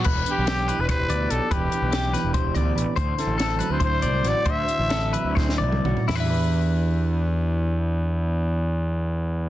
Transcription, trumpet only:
\new Staff \with { instrumentName = "Trumpet" } { \time 7/8 \key e \minor \tempo 4 = 137 r8 g'4~ g'16 b'16 b'4 a'8 | g'2 r4. | r8 a'4~ a'16 c''16 c''4 d''8 | e''2 r4. |
r2. r8 | r2. r8 | }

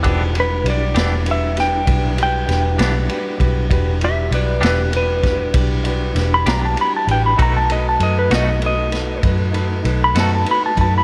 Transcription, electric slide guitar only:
\new Staff \with { instrumentName = "Electric slide guitar" } { \time 12/8 \key e \minor \tempo 4. = 65 r8 b'8 d''4 e''8 g''4 g''4 r4. | r8 <g' e''>8 <b' d''>8 <g' b'>8 b'4 r4 r16 b''16 ais''16 a''16 b''16 a''16 g''16 b''16 | ais''16 a''16 dis''16 a''16 dis''16 b'16 dis''8 dis''4 r4 r16 b''16 a''16 a''16 b''16 a''16 a''16 b''16 | }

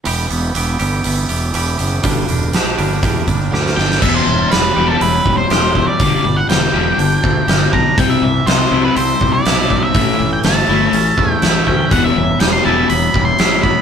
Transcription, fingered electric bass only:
\new Staff \with { instrumentName = "Fingered electric bass" } { \clef bass \time 4/4 \key e \minor \tempo 4 = 122 e,,8 e,,8 e,,8 g,,8 g,,8 e,,8 e,,8 fis,,8 | g,,8 e,,8 bes,,8 g,,8 e,8 g,,8 d,8 g,,8 | e,,8 e,,8 e,,8 e,,8 e,,8 e,,8 e,,4 | g,,8 g,,8 e,,8 e,,8 g,,8 d,8 g,,8 b,,8 |
c,8 c,8 c,8 c,8 c,8 c,8 b,,4 | a,,8 a,,8 g,,8 g,,8 a,,8 e,8 a,,8 d,8 | e,,8 e,,8 e,,8 e,,8 e,,8 e,,8 a,,4 | }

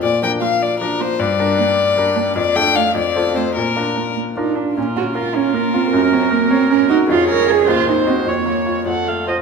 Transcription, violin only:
\new Staff \with { instrumentName = "Violin" } { \time 6/8 \key bes \major \tempo 4. = 102 d''8 g''8 f''8 d''8 bes'8 c''8 | d''2. | d''8 g''8 f''8 d''4 c''8 | bes'4. r4. |
\key bes \minor bes'2.~ | bes'2. | des''4. c''4. | des''4. a'4 r8 | }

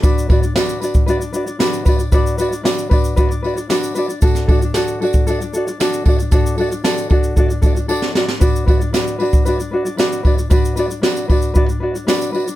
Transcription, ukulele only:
\new Staff \with { instrumentName = "Ukulele" } { \time 4/4 \key b \phrygian \tempo 4 = 115 <d' fis' b' d''>8 <d' fis' b' d''>16 <d' fis' d''>16 <d' fis' b' d''>8 <d' fis' b' d''>8 <d' fis' b' d''>16 <d' fis' d''>16 <d' fis' b' d''>16 <d' fis' d''>16 <d' fis' b' d''>8 <d' fis' b' d''>16 <d' fis' d''>16 | <d' fis' b' d''>8 <d' fis' b' d''>16 <d' fis' d''>16 <d' fis' b' d''>8 <d' fis' b' d''>8 <d' fis' b' d''>16 <d' fis' d''>16 <d' fis' b' d''>16 <d' fis' d''>16 <d' fis' b' d''>8 <d' fis' b' d''>16 <d' fis' d''>16 | <d' fis' a' d''>8 <d' fis' a' d''>16 <d' fis' d''>16 <d' fis' a' d''>8 <d' fis' a' d''>8 <d' fis' a' d''>16 <d' fis' d''>16 <d' fis' a' d''>16 <d' fis' d''>16 <d' fis' a' d''>8 <d' fis' a' d''>16 <d' fis' d''>16 | <d' fis' a' d''>8 <d' fis' a' d''>16 <d' fis' d''>16 <d' fis' a' d''>8 <d' fis' a' d''>8 <d' fis' a' d''>16 <d' fis' d''>16 <d' fis' a' d''>16 <d' fis' d''>16 <d' fis' a' d''>8 <d' fis' a' d''>16 <d' fis' d''>16 |
<d' fis' b' d''>8 <d' fis' b' d''>16 <d' fis' d''>16 <d' fis' b' d''>8 <d' fis' b' d''>8 <d' fis' b' d''>16 <d' fis' d''>16 <d' fis' b' d''>16 <d' fis' d''>16 <d' fis' b' d''>8 <d' fis' b' d''>16 <d' fis'>16 | <d' fis' b' d''>8 <d' fis' b' d''>16 <d' fis' d''>16 <d' fis' b' d''>8 <d' fis' b' d''>8 <d' fis' b' d''>16 <d' fis' d''>16 <d' fis' b' d''>16 <d' fis' d''>16 <d' fis' b' d''>8 <d' fis' b' d''>16 <d' fis' d''>16 | }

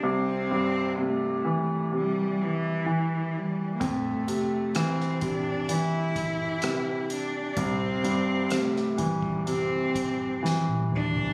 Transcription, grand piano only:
\new Staff \with { instrumentName = "Grand piano" } { \clef bass \time 4/4 \key c \mixolydian \tempo 4 = 64 c,8 g,8 c8 e8 c4 e4 | f,8 c8 e8 c8 e4 c4 | c,8 g,8 c8 e8 c4 e4 | }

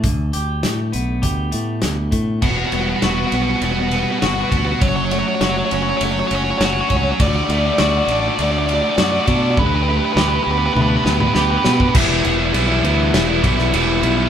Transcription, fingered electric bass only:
\new Staff \with { instrumentName = "Fingered electric bass" } { \clef bass \time 4/4 \key e \dorian \tempo 4 = 101 d,8 d,8 a,8 b,,8 d,8 a,8 d,8 a,8 | e,,8 e,,8 e,,8 b,,8 e,,4 g,,8 d,8 | fis,,4 fis,,8 fis,,8 fis,,8 fis,,8 fis,,8 cis,8 | d,8 d,8 d,8 a,,8 d,4 fis,8 b,8 |
d,4 d,8 d,8 d,8 d,8 d,8 b,8 | e,,8 e,,8 b,,8 d,8 e,,8 b,,8 e,,8 b,,8 | }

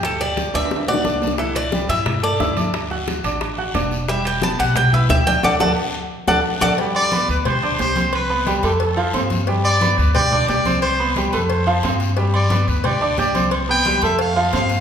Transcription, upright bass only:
\new Staff \with { instrumentName = "Upright bass" } { \clef bass \time 4/4 \key d \mixolydian \tempo 4 = 178 d,4. d,4. c,4~ | c,4. g,4. d,4~ | d,4. a,,4. e,,4~ | e,,4. b,,4. d,4 |
d,8 d,8 r4. d,8 r8 d,8 | r4. d,4. c,4~ | c,4. f,4. g,4~ | g,4. d,4. c,4~ |
c,4. f,4. g,4~ | g,4. d,4. c,4~ | c,4. f,4. g,4 | }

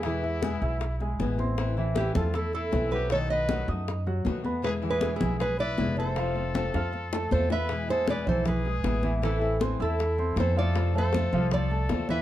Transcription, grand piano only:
\new Staff \with { instrumentName = "Grand piano" } { \time 4/4 \key e \phrygian \tempo 4 = 157 <e e' e''>4 <gis gis' gis''>8 <e' e'' e'''>4 <gis gis' gis''>4 <c' c'' c'''>8~ | <c' c'' c'''>8 <e e' e''>4 <a a' a''>4 <e' e'' e'''>4 <fis fis' fis''>8 | <dis dis' dis''>4 <fis fis' fis''>8 <dis' dis'' dis'''>4 <fis fis' fis''>4 <b b' b''>8~ | <b b' b''>8 <e e' e''>4 <gis gis' gis''>4 <e' e'' e'''>4 <a a' a''>8 |
<f f' f''>4 <a a' a''>8 <f' f'' f'''>4 <a a' a''>4 <b b' b''>8 | r8 <gis gis' gis''>4 <e e' e''>4 <gis gis' gis''>4 <e e' e''>8 | <e e' e''>4 <c' c'' c'''>8 <e' e'' e'''>4 <c' c'' c'''>4 <f f' f''>8~ | <f f' f''>8 <a a' a''>4 <f f' f''>4 <a a' a''>4 <e e' e''>8 | }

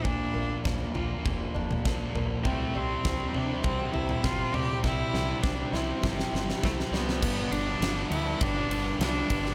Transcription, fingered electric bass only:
\new Staff \with { instrumentName = "Fingered electric bass" } { \clef bass \time 4/4 \key c \major \tempo 4 = 101 bes,,8 bes,,8 bes,,8 bes,,8 f,,8 f,,8 bes,,8 bes,,8 | c,8 c,8 c,8 c8 c,8 c,8 g,,8 c8 | c,8 c,8 c,8 c,8 g,,8 g,,8 c,8 c,8 | g,,8 g,,8 g,,8 d,8 g,,8 g,,8 c,8 g,,8 | }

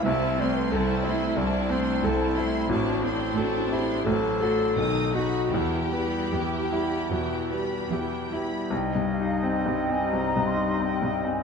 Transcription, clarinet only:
\new Staff \with { instrumentName = "Clarinet" } { \time 4/4 \key e \minor \tempo 4 = 86 e''8 d''16 b'16 c''8 e''8 d''8. r16 e'4 | fis'8 e'8 fis'8 g'8 a'4. fis'8 | e'2. r4 | \key c \minor g'1 | }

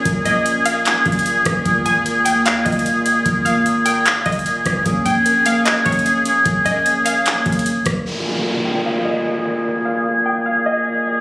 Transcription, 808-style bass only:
\new Staff \with { instrumentName = "808-style bass" } { \clef bass \time 4/4 \key bes \dorian \tempo 4 = 150 bes,,8 bes,,2 bes,,4 bes,,8 | aes,,8 aes,,4 ees,4 aes,,4. | aes,,8 aes,,2 aes,,8. g,,16 aes,,8 | bes,,8 bes,,2 bes,,4. |
bes,,8 bes,,2 bes,,4 bes,,8 | r1 | r1 | }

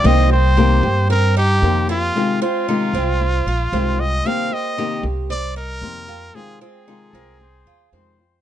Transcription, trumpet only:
\new Staff \with { instrumentName = "Trumpet" } { \time 4/4 \key c \minor \tempo 4 = 114 ees''8 c''4. bes'8 g'4 f'8~ | f'8 f'2. ees''8 | f''8 ees''4 r8 d''8 bes'4. | aes'8 aes'2. r8 | }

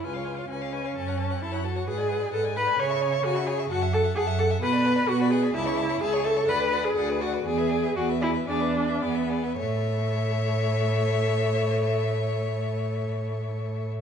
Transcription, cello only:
\new Staff \with { instrumentName = "Cello" } { \clef bass \time 4/4 \key a \major \tempo 4 = 126 cis,4 cis,4 fis,4 fis,4 | gis,4 gis,4 cis4 cis4 | fis,4 fis,4 b,4 b,4 | cis,4 cis,4 d,4 d,4 |
e,4 e,4 e,4 e,4 | a,1~ | a,1 | }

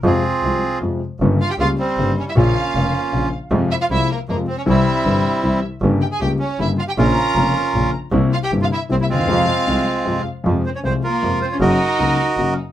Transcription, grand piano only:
\new Staff \with { instrumentName = "Grand piano" } { \clef bass \time 3/4 \key f \minor \tempo 4 = 156 <f, c f aes f'>8 r8 <c, c f aes f'>8 r8 <f, c f aes f'>8 r8 | <g,, g, des g bes g'>8 r8 <des, des g bes g'>8 r8 <g,, g, des g bes g'>8 r8 | <bes,, bes, des f bes f'>8 r8 <f,, f, des f bes f'>8 r8 <bes,, bes, des f bes f'>8 r8 | <f, c f aes f'>8 r8 <c, c f aes f'>8 r8 <f, c f aes f'>8 r8 |
<c, c e g e'>8 r8 <g,, g, c e g e'>8 r8 <c, c e g e'>8 r8 | <g,, g, des g bes g'>8 r8 <des, des g bes g'>8 r8 <g,, g, des g bes g'>8 r8 | <bes,, bes, des f bes f'>8 r8 <f,, f, des f bes f'>8 r8 <bes,, bes, des f bes f'>8 r8 | <c, c g bes e'>8 r8 <g,, g, c g bes e'>8 r8 <c, c g bes e'>8 r32 d,32 ees,32 e,32 |
<f, c f aes f'>8 r8 <c, c f aes f'>8 r8 <f, c f aes f'>8 r8 | <f, c f aes f'>8 r8 <c, c f aes f'>8 r8 <f, c f aes f'>8 r8 | <ges, des ges bes ges'>8 r8 <des, des ges bes ges'>8 r8 <ges, des ges bes ges'>8 r8 | }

